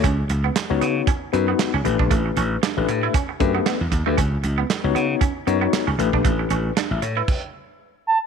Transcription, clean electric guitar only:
X:1
M:4/4
L:1/16
Q:"Swing 16ths" 1/4=116
K:Alyd
V:1 name="Clean electric guitar"
C z2 B, z2 B, z C z2 B, z C z =D | A, z C z =D z2 E C z2 B, B, z2 A, | C z2 B, z2 B, z C z2 B, z C z =D | A, z C z =D z2 E z8 |]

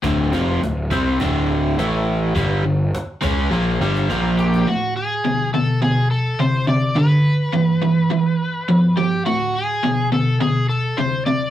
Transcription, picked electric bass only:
X:1
M:4/4
L:1/8
Q:1/4=104
K:G
V:1 name="Picked electric bass" clef=bass
D,,, =F,,, D,,, C,, D,,,2 A,,,2 | G,,, G,,, z ^C,, _B,,, G,,, B,,,2 | z8 | z8 |
z8 |]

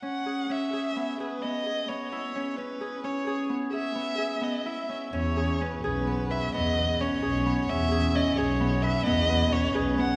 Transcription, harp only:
X:1
M:11/8
L:1/8
Q:1/4=130
K:E
V:1 name="Harp"
C G C G B, G B, G B, E C | C G C G B, G B, G B, E C | C G C G B, B B, B C G B, | C G C G B, B B, B C G B, |]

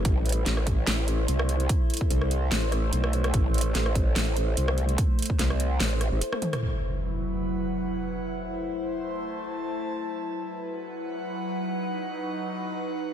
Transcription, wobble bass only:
X:1
M:4/4
L:1/16
Q:"Swing 16ths" 1/4=146
K:Ador
V:1 name="Wobble bass" clef=bass
A,,,4 A,,,4 A,,,4 C,,4 | z4 C,,4 A,,,4 B,,,4 | A,,,4 A,,,4 A,,,4 C,,4 | z4 C,,4 A,,,3 A,,, z4 |
z16 | z16 | z16 | z16 |]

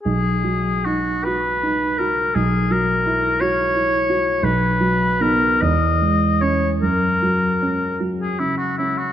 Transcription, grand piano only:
X:1
M:6/8
L:1/8
Q:3/8=51
K:B
V:1 name="Grand piano"
B,,, F, D F D F | B,,, F, E F E F | B,,, F, [B,D] E,, G, C | F,, F, C F, C, C |]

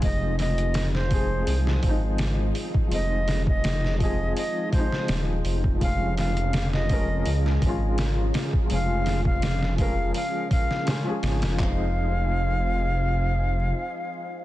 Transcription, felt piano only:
X:1
M:4/4
L:1/16
Q:1/4=83
K:Fm
V:1 name="Felt piano"
[F,A,CE]6 [F,A,CA]4 [F,A,CE]6 | [F,A,CE]6 [F,A,CA]4 [F,A,CE]6 | [F,A,DF]6 [F,A,DB]4 [F,A,DF]6 | [F,A,DF]6 [F,A,DB]4 z2 [F,A,DF] [F,A,DA]3 |
[F,A,CE]16 |]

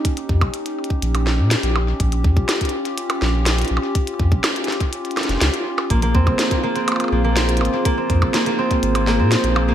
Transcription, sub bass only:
X:1
M:4/4
L:1/16
Q:1/4=123
K:Ebmix
V:1 name="Sub bass" clef=bass
z2 F,, B,,, z4 B,,,3 B,, z B,,,2 z | B,,,2 F,, B,,, z6 B,,,3 z B,,, z | z2 F,, B,,, z6 z F,,, D,, z3 | B,,,2 F,, B,,, z6 B,,,4 A,,, z |
z2 F,, B,,, z4 A,,,3 B,, z B,,,2 z |]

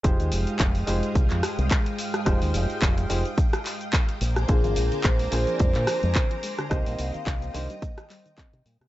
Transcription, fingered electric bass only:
X:1
M:4/4
L:1/16
Q:"Swing 16ths" 1/4=108
K:Fdor
V:1 name="Fingered electric bass" clef=bass
F,,, E,, F,,, z F,,,2 F,,, z C,, F,, z C,, z4 | F,,, E,, F,,, z F,,,2 F,,, z6 z B,,,2 | B,,, A,,, B,,, z B,,,2 B,,, z F,, B,, z F,, z4 | C,, B,,, C,, z C,,2 C,, z6 C, B,, C, |]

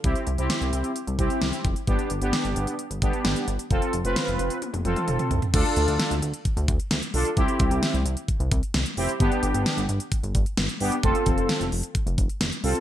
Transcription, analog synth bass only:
X:1
M:4/4
L:1/16
Q:1/4=131
K:Ddor
V:1 name="Analog synth bass" clef=bass
C,, z C,, C,, z C,, C,, z2 C,, C,, z C,, z F,,, z | G,,, z G,,, G,,, z G,,, G,,, z2 G,,, G,,, z G,,, z G,,, z | F,,, z F,,, F,,, z F,,, F,,, z2 F,,, F,,, z F,,, z C,, z | D,, z D,, D,, z D,, D,, z2 D,, D,, z D,, z B,,, z |
C,, z C,, C,, z C,, C,, z2 C,, C,, z C,, z F,,, z | G,,, z G,,, G,,, z G,,, G,,, z2 G,,, G,,, z G,,, z G,,, z | F,,, z F,,, F,,, z F,,, F,,, z2 F,,, F,,, z F,,, z C,, z |]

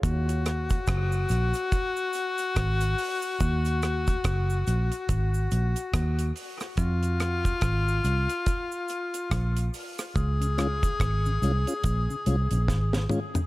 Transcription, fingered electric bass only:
X:1
M:4/4
L:1/16
Q:"Swing 16ths" 1/4=71
K:Ebdor
V:1 name="Fingered electric bass" clef=bass
E,,4 G,,,2 B,,, z4 z A,,,2 z2 | E,,4 G,,,2 B,,, z A,,,2 B,,, z E,,2 z2 | F,,4 A,,,2 C,, z4 z B,,,2 z2 | D,,4 A,,,2 C,, z B,,, z C,, B,,, A,,,2 z2 |]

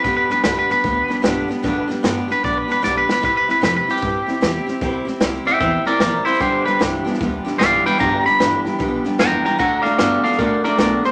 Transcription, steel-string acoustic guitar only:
X:1
M:4/4
L:1/8
Q:"Swing" 1/4=151
K:G
V:1 name="Steel-string acoustic guitar"
[G,,D,G,B,DG] [G,B,DG] [G,,D,G,B,DG] [G,B,DG] [G,B,DG] [G,B,DG] [G,,D,G,B,DG] [G,B,DG] | [G,,D,G,B,DG] [G,B,DG] [G,,D,G,B,DG] [G,B,DG] [G,B,DG] [G,B,DG] [G,,D,G,B,DG] [G,B,DG] | [C,G,CEG] [CEG] [C,G,CEG] [CEG] [G,CEG] [CEG] [C,G,CEG] [CEG] | [C,G,CEG] [CEG] [C,G,CEG] [CEG] [G,CEG] [CEG] [C,G,CEG] [CEG] |
[G,,D,G,B,DG] [G,B,DG] [G,,D,G,B,DG] [G,B,DG] [G,B,DG] [G,B,DG] [G,,D,G,B,DG] [G,B,DG] | [G,,D,G,B,DG] [G,B,DG] [G,,D,G,B,DG] [G,B,DG] [G,B,DG] [G,B,DG] [G,,D,G,B,DG] [G,B,DG] | [D,A,DFA] [DFA] [D,A,DFA] [DFA] [A,DFA] [DFA] [D,A,DFA] [DFA] |]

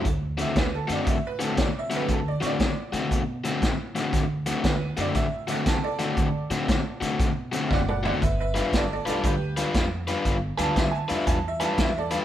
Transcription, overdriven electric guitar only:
X:1
M:4/4
L:1/8
Q:"Swing" 1/4=118
K:Dmix
V:1 name="Overdriven electric guitar"
z [D,A,CF] z [D,A,CF] z [D,A,CF] z [D,A,CF] | z [D,A,CF] z [D,A,CF] z [D,A,CF] z [D,A,CF] | z [D,A,CF] z [D,A,CF] z [D,A,CF] z [D,A,CF] | z [D,A,CF] z [D,A,CF] z [D,A,CF] z [D,A,CF] |
z [G,D=FB] z [G,DFB] z [G,DFB] z [G,DFB] | z [G,D=FB] z [G,DFB] z [G,DFB] z [G,DFB] |]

